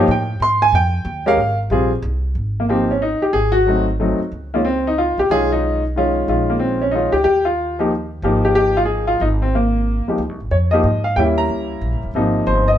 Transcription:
0.08 0.39 A2 medium
0.08 0.40 G5 medium
0.40 0.72 G#2 medium
0.40 0.61 C6 loud
0.62 0.73 G#5 loud
0.72 1.04 F2 medium
0.72 1.23 G5 loud
1.05 1.36 D#2 medium
1.26 1.37 G#3 medium
1.26 1.37 C#4 medium
1.26 1.37 G4 medium
1.26 1.38 A#4 medium
1.26 1.57 F5 loud
1.37 1.69 G#1 medium
1.70 2.02 A#1 medium
1.70 1.89 G3 medium
1.70 1.90 C4 medium
1.70 1.90 F4 medium
1.70 1.90 G#4 medium
2.02 2.35 C2 loud
2.35 3.17 G#1 medium
2.60 2.64 A#3 medium
2.69 2.87 F3 medium
2.69 2.87 A#3 medium
2.69 2.91 C4 medium
2.69 2.87 D#4 medium
2.69 2.88 G4 medium
2.91 3.02 C#4 medium
3.02 3.23 D#4 medium
3.21 3.34 G4 medium
3.21 muted upright bass stroke soft
3.33 4.15 G#1 medium
3.33 3.52 G#4 loud
3.52 3.83 F#4 loud
3.66 3.85 F#3 medium
3.66 3.85 A3 medium
3.66 3.85 C4 medium
3.66 3.86 D#4 medium
4.00 4.18 F#3 medium
4.00 4.18 A3 medium
4.00 4.18 C4 medium
4.00 4.18 D#4 medium
4.19 muted upright bass stroke soft
4.32 5.13 C#2 medium
4.54 4.64 D#3 medium
4.54 4.64 G#3 medium
4.54 4.59 A#3 medium
4.54 4.65 C#4 medium
4.54 4.65 F4 medium
4.65 4.87 C4 medium
4.87 4.97 D#4 medium
4.98 5.19 F4 medium
5.18 5.29 C2 medium
5.18 5.31 G4 medium
5.29 6.23 B1 medium
5.29 5.79 D#3 medium
5.29 5.79 G#3 medium
5.29 5.79 C#4 medium
5.29 5.79 F4 medium
5.29 5.49 G#4 loud
5.52 5.82 D#4 medium
5.96 6.26 D#3 medium
5.96 6.27 G#3 medium
5.96 6.27 C#4 medium
5.96 6.28 F4 medium
6.28 7.09 A#1 medium
6.28 6.77 D#3 medium
6.28 6.77 G#3 medium
6.28 6.77 C#4 medium
6.28 6.77 F4 medium
6.50 6.55 A#3 medium
6.59 6.82 C4 medium
6.82 6.93 C#4 medium
6.91 7.12 D#3 medium
6.91 7.12 G#3 medium
6.91 7.12 C#4 medium
6.91 7.11 D#4 medium
6.96 7.12 F4 medium
7.12 7.24 C#2 medium
7.12 7.23 G4 medium
7.24 8.19 D#2 medium
7.24 7.44 G4 loud
7.45 7.76 F4 medium
7.79 7.90 F3 medium
7.79 7.90 A#3 medium
7.79 7.90 D#4 medium
7.79 7.90 G4 medium
8.22 9.17 G#1 medium
8.22 9.14 F3 medium
8.22 9.14 A#3 medium
8.22 9.14 D#4 medium
8.22 8.43 G4 medium
8.45 8.54 G4 medium
8.55 8.76 G4 loud
8.77 8.82 F4 medium
8.85 9.08 G#4 medium
9.07 9.21 F4 medium
9.20 10.02 G#1 medium
9.20 9.26 D#4 medium
9.42 9.54 C4 medium
9.55 10.04 A#3 medium
10.06 10.18 C#2 soft
10.06 10.18 F3 soft
10.06 10.18 A#3 soft
10.06 10.19 D#4 soft
10.06 10.19 G4 medium
10.06 muted upright bass stroke soft
10.18 10.29 C#2 medium
10.29 10.40 C2 medium
10.40 10.50 G#1 medium
10.51 10.83 F2 medium
10.51 10.56 C#5 medium
10.71 10.83 F3 medium
10.71 10.83 A#3 medium
10.71 10.84 D#4 medium
10.71 10.84 G4 medium
10.71 11.05 D#5 medium
10.83 11.15 G#2 medium
11.04 11.16 F5 medium
11.16 11.48 D#2 medium
11.16 12.08 G3 medium
11.16 12.08 A#3 medium
11.16 12.08 C#4 medium
11.16 12.08 E4 medium
11.16 11.21 G5 medium
11.38 11.99 A#5 medium
11.49 11.81 C#2 medium
11.81 11.94 A#1 medium
11.92 12.02 G1 medium
12.03 12.13 D#1 medium
12.14 12.46 G#1 medium
12.14 12.63 C3 medium
12.14 12.64 F3 medium
12.14 12.64 A#3 medium
12.14 12.64 D#4 medium
12.47 12.78 G1 medium
12.47 12.66 C5 medium
12.68 12.78 D#5 medium

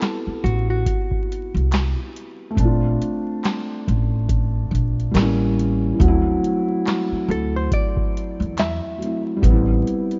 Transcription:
0.00 2.50 B3 medium
0.00 2.53 C4 medium
0.00 2.55 E4 medium
0.00 2.57 F#4 medium
0.00 2.59 G4 medium
0.00 0.46 A4 loud
0.00 snare loud
0.00 clap medium
0.00 closed hi-hat medium
0.27 muted upright bass stroke soft
0.44 0.82 A1 medium
0.44 0.69 F#4 medium
0.44 closed hi-hat medium
0.70 2.11 F#4 medium
0.86 kick loud
0.86 closed hi-hat medium
1.11 kick medium
1.32 closed hi-hat medium
1.54 1.93 C2 medium
1.54 closed hi-hat soft
1.72 snare loud
1.72 clap loud
1.72 closed hi-hat loud
2.16 closed hi-hat medium
2.51 5.07 A3 medium
2.55 2.95 A#1 medium
2.55 5.09 C4 medium
2.55 kick loud
2.55 closed hi-hat medium
2.60 5.11 D4 medium
2.65 5.14 F4 medium
3.02 closed hi-hat medium
3.45 snare loud
3.45 clap medium
3.45 closed hi-hat medium
3.88 4.64 A1 medium
3.88 kick medium
3.88 closed hi-hat medium
4.29 kick loud
4.29 closed hi-hat medium
4.71 5.10 A#1 medium
4.71 kick medium
4.75 closed hi-hat medium
5.00 closed hi-hat soft
5.11 5.91 A1 medium
5.11 5.98 G3 medium
5.11 6.00 A#3 medium
5.11 closed hi-hat loud
5.16 5.23 C4 medium
5.16 6.02 E4 medium
5.16 snare loud
5.16 clap loud
5.22 6.04 C#4 medium
5.59 closed hi-hat medium
5.94 6.05 E3 medium
5.99 6.38 D2 loud
5.99 8.96 F#3 medium
5.99 8.95 A3 medium
5.99 kick loud
5.99 closed hi-hat medium
6.03 8.98 C4 medium
6.08 9.00 E4 loud
6.44 closed hi-hat medium
6.87 snare loud
6.87 clap medium
6.87 closed hi-hat medium
7.12 muted upright bass stroke soft
7.28 7.67 D2 medium
7.28 7.54 A4 medium
7.28 closed hi-hat medium
7.56 7.73 C5 medium
7.71 8.54 D5 loud
7.71 kick loud
7.71 closed hi-hat medium
7.97 kick medium
8.17 closed hi-hat medium
8.40 8.78 E2 medium
8.40 closed hi-hat soft
8.58 9.23 E5 loud
8.58 snare loud
8.58 clap loud
8.58 closed hi-hat loud
8.98 9.42 F#3 soft
8.98 9.43 A3 soft
9.02 9.44 C4 soft
9.02 9.45 E4 medium
9.02 closed hi-hat medium
9.37 10.19 G3 medium
9.41 9.81 A1 loud
9.41 10.19 B3 medium
9.41 kick loud
9.41 closed hi-hat medium
9.46 10.19 C4 medium
9.51 10.19 E4 medium
9.87 closed hi-hat medium
10.11 closed hi-hat soft

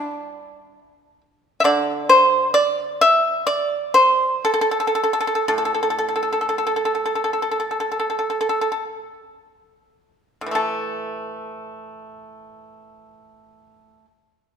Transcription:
0.00 0.78 G3 soft
0.00 1.21 D4 soft
1.60 4.44 D3 soft
1.60 1.65 E5 medium
1.65 2.06 D5 medium
2.09 2.52 C5 medium
2.54 2.98 D5 medium
3.01 3.45 E5 medium
3.47 3.91 D5 medium
3.94 4.41 C5 medium
4.45 4.52 A4 medium
4.54 4.60 A4 soft
4.61 4.69 A4 medium
4.71 4.78 A4 soft
4.80 4.86 A4 medium
4.87 4.94 A4 soft
4.95 5.02 A4 soft
5.04 5.11 A4 soft
5.13 5.19 A4 soft
5.21 5.26 A4 soft
5.27 5.34 A4 soft
5.35 5.43 A4 soft
5.48 9.07 A2 soft
5.48 5.57 A4 medium
5.58 5.64 A4 soft
5.65 5.73 A4 soft
5.74 5.82 A4 soft
5.83 5.89 A4 soft
5.90 5.97 A4 soft
5.99 6.07 A4 soft
6.09 6.14 A4 soft
6.16 6.21 A4 soft
6.23 6.31 A4 soft
6.33 6.40 A4 soft
6.41 6.48 A4 soft
6.49 6.57 A4 soft
6.58 6.65 A4 soft
6.67 6.75 A4 soft
6.76 6.84 A4 soft
6.85 6.94 A4 soft
6.95 7.04 A4 soft
7.06 7.14 A4 soft
7.15 7.23 A4 soft
7.24 7.32 A4 soft
7.33 7.41 A4 soft
7.42 7.50 A4 soft
7.51 7.59 A4 soft
7.60 7.69 A4 soft
7.71 7.79 A4 soft
7.80 7.89 A4 soft
7.92 7.98 A4 soft
8.00 8.09 A4 soft
8.10 8.18 A4 soft
8.19 8.29 A4 soft
8.30 8.39 A4 soft
8.41 8.48 A4 soft
8.49 8.60 A4 soft
8.61 8.71 A4 soft
8.72 8.83 A4 soft
10.41 13.95 A2 soft
10.46 14.00 E3 soft
10.51 14.05 A3 soft
10.51 14.05 A4 soft

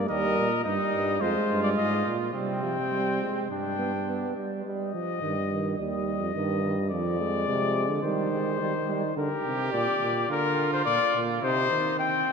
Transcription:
0.00 0.10 A#3 loud
0.09 0.40 D#2 medium
0.09 0.48 G3 medium
0.09 0.61 A#4 medium
0.09 0.64 D#5 loud
0.38 0.64 A#2 medium
0.64 0.78 G2 medium
0.64 1.22 G3 medium
0.64 1.22 D#4 medium
0.64 1.23 D#5 medium
0.93 1.21 G2 medium
1.20 1.35 F2 medium
1.20 2.06 G#3 medium
1.20 2.33 F4 medium
1.20 1.63 C5 loud
1.50 1.77 G2 medium
1.63 1.70 D5 medium
1.78 2.06 G#2 medium
1.78 2.14 D#5 medium
2.06 2.34 A#2 medium
2.34 3.20 C3 medium
2.34 2.62 G3 medium
2.34 3.48 C4 medium
2.34 3.47 G5 medium
2.63 2.76 F3 medium
2.93 3.23 G3 medium
3.21 3.49 G#3 medium
3.50 4.33 G2 medium
3.50 3.78 G3 medium
3.50 4.35 D4 medium
3.50 4.36 G5 medium
3.79 3.92 B3 medium
4.08 4.36 B3 medium
4.36 4.65 G3 medium
4.65 4.92 G3 medium
4.65 5.75 D#5 medium
4.94 5.21 F3 medium
5.22 5.75 G2 medium
5.22 5.35 D#3 medium
5.50 5.78 D#3 medium
5.78 6.22 D#2 medium
5.78 6.34 G3 medium
5.78 6.89 D#5 medium
6.21 6.35 F2 medium
6.35 6.93 G2 medium
6.35 6.63 D#3 medium
6.64 6.76 D#3 medium
6.90 7.47 F2 loud
6.90 7.19 F3 medium
6.90 8.01 D5 medium
7.20 8.03 G#3 medium
7.48 7.91 C3 medium
7.89 8.03 D3 medium
8.03 8.59 D#3 medium
8.03 8.32 G3 medium
8.03 9.14 C5 medium
8.32 8.60 G#3 medium
8.60 9.15 D#3 loud
8.60 8.73 G3 medium
8.89 9.01 G3 medium
9.16 9.29 D3 medium
9.16 10.25 G4 medium
9.16 9.72 A#4 medium
9.45 9.72 C3 medium
9.72 9.86 A#2 medium
9.72 10.28 D5 loud
10.02 10.28 A#2 medium
10.29 10.84 D3 medium
10.29 11.44 F4 medium
10.29 10.72 A#4 loud
10.73 10.85 C5 loud
10.86 10.99 A#2 medium
10.86 11.21 D5 loud
11.15 11.42 A#2 medium
11.43 11.70 C3 loud
11.43 11.98 D#4 medium
11.43 11.95 C5 loud
11.71 12.26 D#3 medium
11.99 12.32 C4 medium
11.99 12.32 G5 loud

